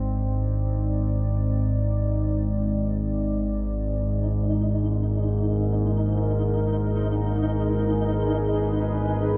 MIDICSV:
0, 0, Header, 1, 4, 480
1, 0, Start_track
1, 0, Tempo, 500000
1, 9000, End_track
2, 0, Start_track
2, 0, Title_t, "Ambient pad"
2, 0, Program_c, 0, 92
2, 0, Note_on_c, 0, 60, 84
2, 0, Note_on_c, 0, 63, 72
2, 0, Note_on_c, 0, 74, 68
2, 3495, Note_off_c, 0, 74, 0
2, 3497, Note_on_c, 0, 70, 78
2, 3500, Note_off_c, 0, 60, 0
2, 4481, Note_on_c, 0, 68, 87
2, 6403, Note_on_c, 0, 71, 85
2, 6789, Note_off_c, 0, 63, 0
2, 9000, Note_off_c, 0, 68, 0
2, 9000, Note_off_c, 0, 70, 0
2, 9000, Note_off_c, 0, 71, 0
2, 9000, End_track
3, 0, Start_track
3, 0, Title_t, "Synth texture"
3, 0, Program_c, 1, 99
3, 3518, Note_on_c, 1, 63, 76
3, 9000, Note_off_c, 1, 63, 0
3, 9000, End_track
4, 0, Start_track
4, 0, Title_t, "Synth drone"
4, 0, Program_c, 2, 95
4, 0, Note_on_c, 2, 32, 68
4, 0, Note_on_c, 2, 44, 69
4, 9000, Note_off_c, 2, 32, 0
4, 9000, Note_off_c, 2, 44, 0
4, 9000, End_track
0, 0, End_of_file